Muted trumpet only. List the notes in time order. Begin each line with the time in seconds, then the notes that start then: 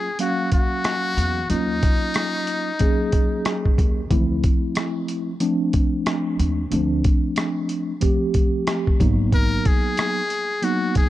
Already playing: G#4
0.20 F#4
0.53 F#4
1.50 D#4
9.34 A#4
9.67 G#4
10.64 F#4
10.97 G#4